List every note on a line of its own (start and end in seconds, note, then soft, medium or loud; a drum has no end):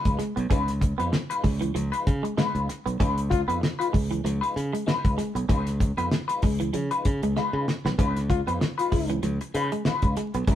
0.00 0.17 G#3 medium
0.00 0.17 D#4 medium
0.00 0.18 F4 medium
0.00 0.18 B4 medium
0.05 0.17 C#2 medium
0.05 kick medium
0.05 closed hi-hat soft
0.19 0.32 G#3 medium
0.19 muted clean electric guitar stroke soft
0.19 snare soft
0.19 closed hi-hat medium
0.36 0.49 B1 loud
0.36 0.47 B3 medium
0.36 muted clean electric guitar stroke soft
0.36 closed hi-hat soft
0.50 0.92 C#2 loud
0.50 0.69 G#3 medium
0.50 0.63 C#4 medium
0.50 0.69 D#4 medium
0.50 0.69 F4 medium
0.50 0.70 B4 medium
0.50 kick loud
0.50 closed hi-hat medium
0.68 snare soft
0.68 closed hi-hat medium
0.81 muted clean electric guitar stroke soft
0.81 kick medium
0.81 closed hi-hat medium
0.98 1.11 F2 medium
0.98 1.11 G#3 medium
0.98 1.09 B3 medium
0.98 1.11 D#4 medium
0.98 1.11 F4 medium
0.98 1.11 B4 medium
0.98 closed hi-hat soft
1.13 muted clean electric guitar stroke soft
1.13 snare loud
1.30 1.42 G#3 medium
1.30 1.43 D#4 medium
1.30 1.43 F4 medium
1.30 1.43 B4 medium
1.30 closed hi-hat medium
1.43 1.71 C#2 loud
1.43 1.57 G#3 medium
1.43 muted clean electric guitar stroke soft
1.43 kick medium
1.43 open hi-hat medium
1.61 1.71 E3 medium
1.61 muted clean electric guitar stroke soft
1.61 closed hi-hat soft
1.74 1.90 C#2 medium
1.74 1.88 F3 medium
1.74 muted clean electric guitar stroke soft
1.74 closed hi-hat medium
1.92 2.05 G#3 medium
1.92 2.05 D#4 medium
1.92 2.06 F4 medium
1.92 2.06 B4 medium
1.92 muted clean electric guitar stroke soft
1.92 closed hi-hat medium
2.06 2.22 C#3 loud
2.06 muted clean electric guitar stroke soft
2.06 kick medium
2.06 closed hi-hat medium
2.23 2.34 G#3 medium
2.23 muted clean electric guitar stroke medium
2.23 closed hi-hat soft
2.37 2.51 G#3 medium
2.37 2.67 G#3 medium
2.37 2.67 D#4 medium
2.37 2.67 F4 loud
2.37 2.67 B4 medium
2.37 muted fingered electric bass stroke soft
2.37 snare loud
2.55 2.67 C#2 medium
2.55 closed hi-hat soft
2.69 muted clean electric guitar stroke soft
2.69 snare soft
2.69 closed hi-hat medium
2.86 2.98 B1 medium
2.86 2.96 B3 medium
2.86 muted clean electric guitar stroke soft
2.86 closed hi-hat soft
3.00 3.42 C#2 loud
3.00 3.18 G#3 medium
3.00 3.13 C#4 medium
3.00 3.18 D#4 medium
3.00 3.19 F4 medium
3.00 3.19 B4 medium
3.00 kick loud
3.00 closed hi-hat medium
3.18 closed hi-hat medium
3.30 3.41 F4 loud
3.30 muted clean electric guitar stroke soft
3.30 kick medium
3.30 closed hi-hat medium
3.48 3.60 F2 medium
3.48 3.60 G#3 soft
3.48 3.59 B3 medium
3.48 3.60 D#4 medium
3.48 3.60 F4 medium
3.48 3.59 B4 medium
3.48 closed hi-hat soft
3.62 muted clean electric guitar stroke soft
3.62 snare loud
3.79 3.92 G#3 medium
3.79 3.92 D#4 medium
3.79 3.88 F4 loud
3.79 3.93 F4 medium
3.79 3.93 B4 medium
3.79 closed hi-hat medium
3.93 4.21 C#2 medium
3.93 4.06 G#3 medium
3.93 muted clean electric guitar stroke soft
3.93 kick medium
3.93 open hi-hat medium
4.11 4.21 E3 medium
4.11 muted clean electric guitar stroke soft
4.11 closed hi-hat soft
4.24 4.39 C#2 loud
4.24 4.38 F3 medium
4.24 muted clean electric guitar stroke soft
4.24 closed hi-hat medium
4.41 4.54 G#3 medium
4.41 4.54 D#4 medium
4.41 4.55 F4 medium
4.41 4.55 B4 medium
4.41 muted clean electric guitar stroke soft
4.41 closed hi-hat medium
4.56 4.71 C#3 loud
4.56 closed hi-hat medium
4.73 4.84 G#3 medium
4.73 muted clean electric guitar stroke soft
4.73 closed hi-hat medium
4.87 5.16 G#3 medium
4.87 5.16 D#4 loud
4.87 5.16 F4 medium
4.87 5.17 B4 loud
4.87 muted fingered electric bass stroke soft
4.87 muted clean electric guitar stroke soft
4.87 snare loud
5.05 5.16 C#2 medium
5.05 kick medium
5.05 closed hi-hat soft
5.18 5.31 G#3 medium
5.18 snare soft
5.18 closed hi-hat medium
5.35 5.47 B1 medium
5.35 5.46 B3 medium
5.35 muted clean electric guitar stroke soft
5.35 closed hi-hat medium
5.49 5.91 C#2 loud
5.49 5.67 G#3 medium
5.49 5.62 C#4 medium
5.49 5.67 D#4 medium
5.49 5.68 F4 medium
5.49 5.68 B4 medium
5.49 kick loud
5.49 closed hi-hat medium
5.67 snare soft
5.67 closed hi-hat medium
5.80 muted clean electric guitar stroke soft
5.80 kick medium
5.80 closed hi-hat medium
5.97 6.09 F2 medium
5.97 6.10 G#3 medium
5.97 6.08 B3 medium
5.97 6.09 D#4 medium
5.97 6.09 F4 medium
5.97 6.09 B4 medium
5.97 closed hi-hat medium
6.11 muted clean electric guitar stroke soft
6.11 snare loud
6.28 6.41 G#3 medium
6.28 6.42 D#4 medium
6.28 6.42 F4 medium
6.28 6.42 B4 medium
6.28 closed hi-hat medium
6.42 6.70 C#2 medium
6.42 6.56 G#3 medium
6.42 muted clean electric guitar stroke medium
6.42 kick medium
6.42 open hi-hat medium
6.60 6.70 E3 medium
6.60 muted clean electric guitar stroke soft
6.60 closed hi-hat soft
6.73 6.89 C#3 medium
6.73 6.87 F3 medium
6.73 muted clean electric guitar stroke soft
6.73 closed hi-hat medium
6.91 7.04 G#3 medium
6.91 7.05 D#4 medium
6.91 7.05 F4 medium
6.91 7.05 B4 medium
6.91 muted clean electric guitar stroke soft
6.91 closed hi-hat medium
7.05 7.20 C#3 medium
7.05 muted clean electric guitar stroke soft
7.05 kick medium
7.05 closed hi-hat medium
7.23 7.34 C#2 medium
7.23 7.33 G#3 medium
7.23 muted clean electric guitar stroke soft
7.23 closed hi-hat soft
7.36 7.65 G#3 medium
7.36 7.50 G#3 medium
7.36 7.66 D#4 medium
7.36 7.66 F4 loud
7.36 7.66 B4 medium
7.36 snare medium
7.53 7.65 C#3 loud
7.68 muted clean electric guitar stroke soft
7.68 snare medium
7.85 7.96 B1 medium
7.85 7.96 B3 medium
7.85 muted clean electric guitar stroke soft
7.85 snare medium
7.98 8.40 C#2 loud
7.98 8.16 G#3 medium
7.98 8.12 C#4 medium
7.98 8.17 D#4 medium
7.98 8.17 F4 medium
7.98 8.17 B4 loud
7.98 kick loud
7.98 closed hi-hat medium
8.16 snare soft
8.16 closed hi-hat medium
8.29 8.41 F4 loud
8.29 muted clean electric guitar stroke soft
8.29 kick medium
8.29 closed hi-hat medium
8.47 8.59 F2 medium
8.47 8.59 G#3 medium
8.47 8.58 B3 medium
8.47 8.59 D#4 soft
8.47 8.59 F4 medium
8.47 8.58 B4 medium
8.47 closed hi-hat medium
8.61 muted clean electric guitar stroke soft
8.61 snare loud
8.78 8.91 G#3 medium
8.78 8.92 D#4 medium
8.78 8.92 F4 medium
8.78 9.17 F4 loud
8.78 8.93 B4 medium
8.78 closed hi-hat medium
8.92 9.19 C#2 medium
8.92 9.05 G#3 medium
8.92 muted clean electric guitar stroke soft
8.92 kick medium
8.92 open hi-hat medium
9.10 9.20 E3 medium
9.10 muted clean electric guitar stroke soft
9.10 closed hi-hat soft
9.23 9.38 C#2 medium
9.23 9.36 F3 medium
9.23 closed hi-hat medium
9.41 muted clean electric guitar stroke medium
9.41 closed hi-hat medium
9.54 9.69 C#3 loud
9.54 9.72 G#3 medium
9.54 9.72 D#4 medium
9.54 9.72 F4 medium
9.54 9.71 B4 loud
9.54 closed hi-hat medium
9.72 9.82 G#3 medium
9.72 muted clean electric guitar stroke medium
9.72 closed hi-hat medium
9.85 10.14 G#3 medium
9.85 10.15 D#4 medium
9.85 10.15 F4 loud
9.85 10.15 B4 medium
9.85 muted clean electric guitar stroke soft
9.85 muted fingered electric bass stroke medium
9.85 snare loud
10.02 10.15 C#2 medium
10.02 kick medium
10.02 closed hi-hat soft
10.17 10.30 G#3 medium
10.17 muted clean electric guitar stroke soft
10.17 snare soft
10.17 closed hi-hat medium
10.34 10.46 B1 medium
10.34 10.45 B3 medium
10.34 muted clean electric guitar stroke soft
10.34 closed hi-hat medium
10.47 10.55 C#2 loud
10.47 10.55 G#3 medium
10.47 10.55 C#4 medium
10.47 10.55 D#4 medium
10.47 10.55 F4 medium
10.47 10.55 B4 medium
10.47 kick loud
10.47 closed hi-hat medium